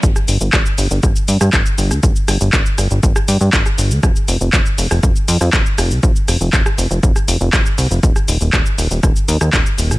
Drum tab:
HH |--o---o---o---o-|--o---o---o---o-|--o---o---o---o-|--o---o---o---o-|
SH |xxxxxxxxxxxxxxxx|xxxxxxxxxxxxxxxx|xxxxxxxxxxxxxxxx|xxxxxxxxxxxxxxxx|
CP |----x-------x---|----x-------x---|----x-------x---|----x-------x---|
SD |-r--r---r--r---r|--r---r--r---r--|r---r--r---r--r-|--r--r---r--r---|
BD |o---o---o---o---|o---o---o---o---|o---o---o---o---|o---o---o---o---|

HH |--o---o---o---o-|
SH |xxxxxxxxxxxxxxxx|
CP |----x-------x---|
SD |-r--r---r--r---r|
BD |o---o---o---o---|